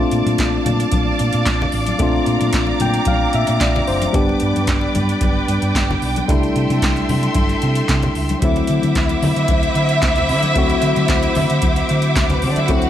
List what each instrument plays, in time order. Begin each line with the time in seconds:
Already playing: tine electric piano A3 C4 D4 F4, string section D5 F5 A5 D6
0.11 fingered electric bass A#2, closed hi-hat
0.26 fingered electric bass A#2, closed hi-hat, high conga
0.38 fingered electric bass A#1, kick, snare, clap, closed hi-hat
0.66 fingered electric bass A#2, closed hi-hat, high conga, low conga
0.80 closed hi-hat
0.92 fingered electric bass A#1, kick, closed hi-hat, high conga
1.19 fingered electric bass A#2, closed hi-hat
1.33 fingered electric bass A#2, closed hi-hat
1.46 fingered electric bass A#1, kick, snare, clap, closed hi-hat
1.61 snare, muted conga, low conga
1.72 fingered electric bass A1, open hi-hat
1.86 closed hi-hat, high conga
1.99 fingered electric bass A#1, tine electric piano A3 C4 D4 F4, string section A#5, kick, closed hi-hat, muted conga, low conga
2.26 fingered electric bass A#2, closed hi-hat
2.41 fingered electric bass A#2, closed hi-hat, high conga
2.53 fingered electric bass A#1, kick, snare, clap, closed hi-hat, muted conga
2.67 muted conga
2.80 fingered electric bass A#2, tine electric piano G5, closed hi-hat, high conga, low conga
2.94 closed hi-hat
3.05 fingered electric bass A#1, tine electric piano F5, kick, closed hi-hat, muted conga, high conga
3.33 fingered electric bass A#2, tine electric piano E5, closed hi-hat
3.47 fingered electric bass A#2, closed hi-hat
3.61 fingered electric bass A#1, tine electric piano D5, kick, snare, clap, closed hi-hat, muted conga
3.75 snare, low conga
3.88 fingered electric bass F#1, tine electric piano C5, open hi-hat
4.02 closed hi-hat, high conga
4.13 fingered electric bass G1, tine electric piano G3 B3 D4 G4, string section B4 D5 G5, kick, closed hi-hat, muted conga, low conga
4.29 muted conga
4.40 fingered electric bass G2, closed hi-hat
4.56 fingered electric bass G2, closed hi-hat, high conga
4.67 fingered electric bass G1, kick, snare, clap, closed hi-hat
4.81 muted conga
4.95 fingered electric bass G2, closed hi-hat, high conga, low conga
5.09 closed hi-hat
5.21 fingered electric bass G1, kick, closed hi-hat, muted conga, high conga
5.48 fingered electric bass G2, closed hi-hat
5.62 fingered electric bass G2, closed hi-hat
5.75 fingered electric bass G1, kick, snare, clap, closed hi-hat, muted conga
5.91 snare, muted conga, low conga
6.02 fingered electric bass B1, open hi-hat
6.16 closed hi-hat, high conga
6.28 fingered electric bass C2, tine electric piano G3 A3 D4 E4, string section A4 E5 C6, kick, closed hi-hat, low conga
6.43 closed hi-hat
6.56 fingered electric bass C3, closed hi-hat
6.70 fingered electric bass C3, closed hi-hat, high conga
6.82 fingered electric bass C2, kick, snare, clap, closed hi-hat, muted conga
6.96 closed hi-hat, muted conga
7.09 fingered electric bass C3, open hi-hat, high conga, low conga
7.23 closed hi-hat
7.34 fingered electric bass G1, kick, closed hi-hat, muted conga, high conga
7.49 closed hi-hat, muted conga
7.62 fingered electric bass C3, closed hi-hat
7.75 closed hi-hat
7.89 fingered electric bass C3, kick, snare, clap, closed hi-hat, muted conga
8.02 closed hi-hat, muted conga, low conga
8.15 fingered electric bass C#2, open hi-hat
8.29 closed hi-hat, high conga
8.41 fingered electric bass D2, tine electric piano F#3 A3 C4, string section E4 C5 E5 F#5 D6, kick, closed hi-hat, muted conga
8.45 tine electric piano E4
8.56 closed hi-hat, muted conga
8.67 fingered electric bass D3, closed hi-hat
8.83 fingered electric bass D3, closed hi-hat, high conga
8.95 fingered electric bass D2, kick, snare, clap, closed hi-hat, muted conga
9.09 closed hi-hat, muted conga
9.22 fingered electric bass D3, open hi-hat, high conga, low conga
9.36 fingered electric bass D3, closed hi-hat
9.48 fingered electric bass D2, kick, closed hi-hat, high conga
9.63 closed hi-hat
9.75 fingered electric bass D3, closed hi-hat
9.89 closed hi-hat
10.02 fingered electric bass D2, kick, snare, clap, closed hi-hat, muted conga
10.16 snare, closed hi-hat, muted conga, low conga
10.29 fingered electric bass D3, open hi-hat
10.43 closed hi-hat, high conga
10.55 fingered electric bass D2, tine electric piano F#3 A3 C4 F#4, kick, closed hi-hat, muted conga
10.70 closed hi-hat, muted conga
10.82 fingered electric bass D3, closed hi-hat
10.96 fingered electric bass D3, closed hi-hat, high conga
11.08 fingered electric bass D2, kick, snare, clap, closed hi-hat, muted conga
11.23 closed hi-hat, muted conga
11.35 fingered electric bass D3, open hi-hat, high conga, low conga
11.50 fingered electric bass D3, closed hi-hat
11.62 fingered electric bass D2, kick, closed hi-hat, high conga
11.76 closed hi-hat, muted conga
11.89 fingered electric bass D3, closed hi-hat
12.02 closed hi-hat
12.15 fingered electric bass D2, kick, snare, clap, closed hi-hat, muted conga
12.30 string section B4, snare, closed hi-hat, muted conga, low conga
12.35 string section B3
12.42 fingered electric bass D3, string section C4 C5, open hi-hat
12.50 string section D4 D5
12.56 string section E4 E5, closed hi-hat, high conga
12.67 fingered electric bass D2, tine electric piano F#3 A3 C4, string section F#4 F#5, kick, closed hi-hat, muted conga
12.72 tine electric piano E4
12.82 closed hi-hat, muted conga